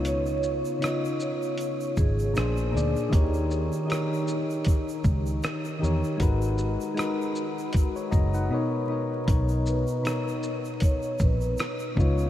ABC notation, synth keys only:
X:1
M:4/4
L:1/16
Q:"Swing 16ths" 1/4=78
K:B
V:1 name="Synth keys"
[C,B,D^Ec]2 z2 [C,B,DEc]4- [C,B,DEc] z3 [A,,A,=DG=c]2 [A,,A,DG=d]2 | [D,D=GAc]2 z2 [D,DGAc]4- [D,DGAc] z4 z [D,DGAc]2 | [G,DFAB]2 z2 [G,DFAB]4- [G,DFAB] c [Fda] [DBf] [B,,B,DAcd]2 [B,,B,DAcd]2 | [B,,B,DAc]2 z2 [B,,B,DAc]4- [B,,B,DAc] z4 z [C,B,D^Ec]2 |]